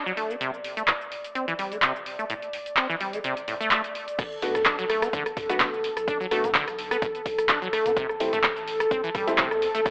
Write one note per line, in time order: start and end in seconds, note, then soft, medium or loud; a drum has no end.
0.00 4.20 D5 medium
0.06 0.12 F#3 loud
0.06 shaker soft
0.17 0.31 A3 medium
0.17 open hi-hat medium
0.30 0.36 B3 medium
0.30 shaker medium
0.41 0.51 C3 loud
0.41 closed hi-hat medium
0.41 shaker soft
0.54 shaker soft
0.64 open hi-hat loud
0.77 0.83 A3 medium
0.77 closed hi-hat soft
0.77 shaker medium
0.88 0.92 A2 medium
0.88 clap loud
0.88 closed hi-hat medium
0.88 shaker soft
1.01 shaker soft
1.12 open hi-hat medium
1.24 closed hi-hat soft
1.24 shaker medium
1.35 1.46 C4 medium
1.35 closed hi-hat medium
1.35 shaker soft
1.48 1.54 E3 loud
1.48 closed hi-hat soft
1.48 shaker soft
1.59 1.73 G3 medium
1.59 open hi-hat loud
1.72 1.78 A3 loud
1.72 closed hi-hat soft
1.72 shaker medium
1.82 1.93 C3 loud
1.82 clap loud
1.82 closed hi-hat medium
1.82 shaker soft
1.96 shaker soft
2.06 open hi-hat medium
2.19 2.25 A3 medium
2.19 shaker medium
2.30 2.34 A2 loud
2.30 closed hi-hat medium
2.30 shaker soft
2.42 closed hi-hat soft
2.42 shaker soft
2.53 open hi-hat loud
2.66 closed hi-hat soft
2.66 shaker medium
2.77 2.87 C4 medium
2.77 clap loud
2.77 closed hi-hat medium
2.77 shaker soft
2.90 2.96 E3 loud
2.90 shaker soft
3.01 3.15 G3 medium
3.01 open hi-hat medium
3.13 3.19 A3 loud
3.13 closed hi-hat soft
3.13 shaker medium
3.24 3.35 C3 loud
3.24 closed hi-hat medium
3.24 shaker soft
3.37 closed hi-hat soft
3.37 shaker soft
3.48 3.55 A2 medium
3.48 open hi-hat loud
3.61 3.70 A3 medium
3.61 closed hi-hat soft
3.61 shaker medium
3.71 3.82 A3 loud
3.71 clap loud
3.71 closed hi-hat medium
3.71 shaker medium
3.84 closed hi-hat soft
3.84 shaker soft
3.95 open hi-hat medium
4.08 closed hi-hat soft
4.08 shaker medium
4.19 4.23 B2 loud
4.19 9.90 A4 medium
4.19 kick loud
4.19 cross-stick medium
4.19 closed hi-hat medium
4.19 tambourine medium
4.19 crash loud
4.19 shaker medium
4.32 shaker soft
4.42 4.72 B1 loud
4.42 4.52 A3 medium
4.42 4.52 B3 medium
4.42 4.52 D4 medium
4.42 4.52 F#4 medium
4.42 open hi-hat loud
4.42 tambourine medium
4.55 cross-stick medium
4.55 snare medium
4.55 closed hi-hat medium
4.55 mid tom medium
4.55 shaker medium
4.66 4.76 D4 medium
4.66 kick loud
4.66 snare loud
4.66 clap loud
4.66 closed hi-hat medium
4.66 tambourine medium
4.66 shaker medium
4.79 5.08 B1 medium
4.79 4.85 F#3 loud
4.79 snare medium
4.79 closed hi-hat soft
4.79 shaker soft
4.90 5.04 A3 medium
4.90 cross-stick medium
4.90 open hi-hat medium
4.90 tambourine medium
5.02 5.08 B3 loud
5.02 cross-stick medium
5.02 closed hi-hat medium
5.02 closed hi-hat soft
5.02 shaker medium
5.13 5.22 B1 loud
5.13 5.24 D3 loud
5.13 kick loud
5.13 closed hi-hat medium
5.13 tambourine medium
5.13 shaker medium
5.26 cross-stick medium
5.26 closed hi-hat soft
5.26 shaker soft
5.37 5.67 B1 loud
5.37 kick medium
5.37 mid tom medium
5.37 open hi-hat loud
5.37 tambourine medium
5.49 5.63 A3 medium
5.49 5.55 B3 medium
5.49 5.63 B3 medium
5.49 5.63 D4 medium
5.49 5.63 F#4 loud
5.49 snare soft
5.49 closed hi-hat medium
5.49 shaker medium
5.60 5.65 B2 loud
5.60 kick loud
5.60 cross-stick medium
5.60 snare loud
5.60 clap loud
5.60 closed hi-hat medium
5.60 tambourine medium
5.60 shaker medium
5.73 5.89 F#1 medium
5.73 shaker soft
5.84 open hi-hat medium
5.84 tambourine medium
5.97 6.26 B1 medium
5.97 cross-stick medium
5.97 closed hi-hat soft
5.97 closed hi-hat medium
5.97 shaker medium
6.08 6.18 D4 medium
6.08 kick loud
6.08 closed hi-hat medium
6.08 tambourine medium
6.08 shaker medium
6.20 6.26 F#3 loud
6.20 shaker soft
6.31 6.61 B1 loud
6.31 6.41 A3 medium
6.31 6.45 A3 medium
6.31 6.41 B3 medium
6.31 6.41 D4 medium
6.31 6.41 F#4 medium
6.31 cross-stick medium
6.31 open hi-hat loud
6.31 tambourine medium
6.44 6.50 B3 loud
6.44 closed hi-hat medium
6.44 mid tom medium
6.44 shaker medium
6.55 6.65 D3 loud
6.55 kick loud
6.55 snare loud
6.55 clap loud
6.55 closed hi-hat medium
6.55 tambourine medium
6.55 shaker medium
6.67 6.97 B1 medium
6.67 cross-stick medium
6.67 closed hi-hat soft
6.67 shaker soft
6.79 open hi-hat medium
6.79 tambourine medium
6.91 6.97 B3 medium
6.91 cross-stick medium
6.91 snare soft
6.91 closed hi-hat medium
6.91 shaker medium
7.02 7.11 B1 medium
7.02 7.06 B2 loud
7.02 kick loud
7.02 cross-stick medium
7.02 closed hi-hat medium
7.02 tambourine medium
7.02 shaker medium
7.15 closed hi-hat soft
7.15 shaker soft
7.26 7.56 B1 loud
7.26 kick medium
7.26 open hi-hat loud
7.26 tambourine medium
7.38 cross-stick medium
7.38 closed hi-hat medium
7.38 shaker medium
7.49 7.60 D4 medium
7.49 kick loud
7.49 snare loud
7.49 clap loud
7.49 closed hi-hat medium
7.49 tambourine medium
7.49 shaker medium
7.62 7.78 F#1 medium
7.62 7.68 F#3 loud
7.62 shaker soft
7.73 7.87 A3 medium
7.73 cross-stick medium
7.73 open hi-hat medium
7.73 tambourine medium
7.86 8.15 A1 loud
7.86 7.92 B3 loud
7.86 closed hi-hat medium
7.86 closed hi-hat soft
7.86 mid tom loud
7.86 shaker medium
7.97 8.07 C3 loud
7.97 kick loud
7.97 closed hi-hat medium
7.97 tambourine medium
7.97 shaker medium
8.09 cross-stick medium
8.09 shaker soft
8.20 8.50 A1 loud
8.20 8.30 G3 medium
8.20 8.30 A3 medium
8.20 8.30 C4 medium
8.20 8.30 E4 medium
8.20 open hi-hat loud
8.20 tambourine medium
8.33 8.39 A3 medium
8.33 snare medium
8.33 closed hi-hat soft
8.33 mid tom medium
8.33 shaker medium
8.44 8.48 A2 loud
8.44 kick loud
8.44 cross-stick medium
8.44 snare loud
8.44 clap loud
8.44 closed hi-hat medium
8.44 tambourine medium
8.44 shaker medium
8.57 8.86 A1 medium
8.57 snare medium
8.57 closed hi-hat soft
8.57 shaker soft
8.68 open hi-hat loud
8.68 tambourine medium
8.80 cross-stick medium
8.80 closed hi-hat medium
8.80 closed hi-hat soft
8.80 shaker medium
8.91 9.00 A1 medium
8.91 9.02 C4 medium
8.91 kick loud
8.91 closed hi-hat medium
8.91 tambourine medium
8.91 shaker medium
9.04 9.10 E3 loud
9.04 closed hi-hat soft
9.04 shaker soft
9.15 9.45 A1 loud
9.15 9.29 G3 medium
9.15 kick medium
9.15 cross-stick medium
9.15 mid tom loud
9.15 open hi-hat loud
9.15 tambourine medium
9.27 9.41 G3 medium
9.27 9.33 A3 loud
9.27 9.41 A3 medium
9.27 9.41 C4 medium
9.27 9.41 E4 loud
9.27 snare soft
9.27 closed hi-hat medium
9.27 shaker medium
9.38 9.49 C3 loud
9.38 kick loud
9.38 snare loud
9.38 clap loud
9.38 closed hi-hat medium
9.38 tambourine medium
9.38 shaker medium
9.51 9.67 E2 medium
9.51 cross-stick medium
9.51 shaker soft
9.62 open hi-hat loud
9.62 tambourine medium
9.75 9.90 A1 medium
9.75 9.81 A3 medium
9.75 closed hi-hat soft
9.75 closed hi-hat medium
9.75 shaker medium
9.85 9.90 A2 loud
9.85 kick loud
9.85 cross-stick medium
9.85 closed hi-hat medium
9.85 tambourine medium
9.85 shaker medium